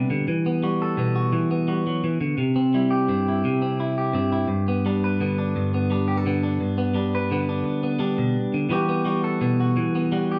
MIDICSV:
0, 0, Header, 1, 3, 480
1, 0, Start_track
1, 0, Key_signature, 1, "major"
1, 0, Tempo, 351700
1, 359, Time_signature, 12, 3, 24, 8
1, 14183, End_track
2, 0, Start_track
2, 0, Title_t, "Clean electric guitar"
2, 0, Program_c, 0, 27
2, 0, Note_on_c, 0, 55, 55
2, 0, Note_on_c, 0, 59, 55
2, 0, Note_on_c, 0, 62, 54
2, 0, Note_on_c, 0, 71, 57
2, 140, Note_on_c, 0, 50, 57
2, 341, Note_off_c, 0, 71, 0
2, 342, Note_off_c, 0, 59, 0
2, 370, Note_off_c, 0, 50, 0
2, 373, Note_off_c, 0, 62, 0
2, 380, Note_on_c, 0, 52, 63
2, 629, Note_on_c, 0, 59, 52
2, 856, Note_off_c, 0, 55, 0
2, 862, Note_on_c, 0, 55, 59
2, 868, Note_on_c, 0, 66, 44
2, 1117, Note_on_c, 0, 69, 52
2, 1321, Note_off_c, 0, 59, 0
2, 1329, Note_on_c, 0, 47, 59
2, 1343, Note_on_c, 0, 59, 54
2, 1560, Note_off_c, 0, 66, 0
2, 1576, Note_on_c, 0, 66, 52
2, 1803, Note_off_c, 0, 52, 0
2, 1807, Note_off_c, 0, 47, 0
2, 1808, Note_on_c, 0, 52, 70
2, 2044, Note_off_c, 0, 59, 0
2, 2061, Note_on_c, 0, 59, 55
2, 2283, Note_off_c, 0, 66, 0
2, 2287, Note_off_c, 0, 55, 0
2, 2292, Note_on_c, 0, 55, 56
2, 2300, Note_on_c, 0, 66, 54
2, 2542, Note_off_c, 0, 55, 0
2, 2548, Note_on_c, 0, 54, 51
2, 2766, Note_off_c, 0, 52, 0
2, 2775, Note_off_c, 0, 54, 0
2, 2780, Note_on_c, 0, 52, 56
2, 3005, Note_off_c, 0, 52, 0
2, 3011, Note_on_c, 0, 50, 55
2, 3223, Note_off_c, 0, 66, 0
2, 3224, Note_off_c, 0, 59, 0
2, 3232, Note_off_c, 0, 69, 0
2, 3240, Note_off_c, 0, 50, 0
2, 3245, Note_on_c, 0, 48, 57
2, 3491, Note_on_c, 0, 60, 50
2, 3742, Note_on_c, 0, 55, 54
2, 3748, Note_on_c, 0, 64, 50
2, 3966, Note_on_c, 0, 67, 55
2, 4200, Note_off_c, 0, 60, 0
2, 4205, Note_off_c, 0, 48, 0
2, 4209, Note_on_c, 0, 43, 57
2, 4216, Note_on_c, 0, 60, 51
2, 4456, Note_off_c, 0, 64, 0
2, 4479, Note_on_c, 0, 64, 52
2, 4687, Note_off_c, 0, 43, 0
2, 4709, Note_on_c, 0, 48, 67
2, 4925, Note_off_c, 0, 60, 0
2, 4941, Note_on_c, 0, 60, 54
2, 5170, Note_off_c, 0, 64, 0
2, 5187, Note_on_c, 0, 64, 55
2, 5424, Note_off_c, 0, 67, 0
2, 5430, Note_on_c, 0, 67, 46
2, 5643, Note_off_c, 0, 60, 0
2, 5643, Note_on_c, 0, 43, 58
2, 5657, Note_off_c, 0, 48, 0
2, 5659, Note_on_c, 0, 60, 54
2, 5885, Note_off_c, 0, 64, 0
2, 5901, Note_on_c, 0, 64, 52
2, 6096, Note_off_c, 0, 43, 0
2, 6103, Note_off_c, 0, 60, 0
2, 6104, Note_off_c, 0, 64, 0
2, 6112, Note_on_c, 0, 43, 61
2, 6388, Note_on_c, 0, 59, 48
2, 6623, Note_off_c, 0, 55, 0
2, 6629, Note_on_c, 0, 55, 51
2, 6636, Note_on_c, 0, 62, 52
2, 6873, Note_off_c, 0, 67, 0
2, 6879, Note_on_c, 0, 71, 47
2, 7104, Note_on_c, 0, 50, 59
2, 7110, Note_off_c, 0, 59, 0
2, 7116, Note_on_c, 0, 59, 47
2, 7342, Note_off_c, 0, 62, 0
2, 7347, Note_on_c, 0, 62, 53
2, 7583, Note_off_c, 0, 43, 0
2, 7588, Note_on_c, 0, 43, 68
2, 7831, Note_off_c, 0, 59, 0
2, 7837, Note_on_c, 0, 59, 52
2, 8051, Note_off_c, 0, 55, 0
2, 8056, Note_off_c, 0, 62, 0
2, 8057, Note_on_c, 0, 55, 55
2, 8074, Note_on_c, 0, 62, 55
2, 8290, Note_off_c, 0, 71, 0
2, 8296, Note_on_c, 0, 67, 56
2, 8426, Note_off_c, 0, 67, 0
2, 8426, Note_on_c, 0, 69, 50
2, 8528, Note_off_c, 0, 50, 0
2, 8544, Note_on_c, 0, 50, 55
2, 8549, Note_off_c, 0, 59, 0
2, 8554, Note_on_c, 0, 59, 50
2, 8761, Note_off_c, 0, 62, 0
2, 8778, Note_on_c, 0, 62, 49
2, 8986, Note_off_c, 0, 50, 0
2, 8998, Note_off_c, 0, 43, 0
2, 9014, Note_on_c, 0, 43, 58
2, 9016, Note_off_c, 0, 69, 0
2, 9247, Note_off_c, 0, 59, 0
2, 9252, Note_on_c, 0, 59, 54
2, 9472, Note_off_c, 0, 55, 0
2, 9475, Note_off_c, 0, 62, 0
2, 9477, Note_on_c, 0, 55, 53
2, 9491, Note_on_c, 0, 62, 52
2, 9755, Note_on_c, 0, 71, 59
2, 9981, Note_on_c, 0, 50, 65
2, 9986, Note_off_c, 0, 59, 0
2, 9991, Note_on_c, 0, 59, 55
2, 10204, Note_off_c, 0, 62, 0
2, 10221, Note_on_c, 0, 62, 55
2, 10413, Note_off_c, 0, 43, 0
2, 10674, Note_off_c, 0, 59, 0
2, 10690, Note_on_c, 0, 59, 54
2, 10902, Note_off_c, 0, 55, 0
2, 10902, Note_off_c, 0, 62, 0
2, 10907, Note_on_c, 0, 55, 61
2, 10918, Note_on_c, 0, 62, 58
2, 11168, Note_on_c, 0, 47, 60
2, 11406, Note_off_c, 0, 47, 0
2, 11412, Note_off_c, 0, 50, 0
2, 11654, Note_on_c, 0, 50, 54
2, 11857, Note_off_c, 0, 59, 0
2, 11859, Note_off_c, 0, 50, 0
2, 11864, Note_on_c, 0, 52, 61
2, 11869, Note_off_c, 0, 71, 0
2, 11873, Note_off_c, 0, 55, 0
2, 11878, Note_on_c, 0, 55, 52
2, 11880, Note_off_c, 0, 62, 0
2, 11891, Note_on_c, 0, 59, 46
2, 11898, Note_on_c, 0, 66, 55
2, 11913, Note_on_c, 0, 67, 62
2, 12115, Note_off_c, 0, 59, 0
2, 12131, Note_on_c, 0, 59, 59
2, 12345, Note_off_c, 0, 66, 0
2, 12348, Note_off_c, 0, 55, 0
2, 12353, Note_on_c, 0, 55, 58
2, 12361, Note_on_c, 0, 66, 54
2, 12604, Note_off_c, 0, 67, 0
2, 12609, Note_on_c, 0, 69, 53
2, 12831, Note_off_c, 0, 59, 0
2, 12841, Note_on_c, 0, 47, 59
2, 12848, Note_on_c, 0, 59, 55
2, 13081, Note_off_c, 0, 66, 0
2, 13107, Note_on_c, 0, 66, 57
2, 13320, Note_off_c, 0, 47, 0
2, 13325, Note_off_c, 0, 52, 0
2, 13330, Note_on_c, 0, 52, 64
2, 13563, Note_off_c, 0, 59, 0
2, 13583, Note_on_c, 0, 59, 54
2, 13806, Note_off_c, 0, 66, 0
2, 13807, Note_off_c, 0, 55, 0
2, 13813, Note_on_c, 0, 55, 66
2, 13822, Note_on_c, 0, 66, 56
2, 14043, Note_off_c, 0, 69, 0
2, 14078, Note_on_c, 0, 67, 54
2, 14183, Note_off_c, 0, 52, 0
2, 14183, Note_off_c, 0, 55, 0
2, 14183, Note_off_c, 0, 59, 0
2, 14183, Note_off_c, 0, 66, 0
2, 14183, Note_off_c, 0, 67, 0
2, 14183, End_track
3, 0, Start_track
3, 0, Title_t, "Muted clean electric guitar strokes"
3, 10430, Note_on_c, 9, 29, 70
3, 10566, Note_off_c, 9, 29, 0
3, 14183, End_track
0, 0, End_of_file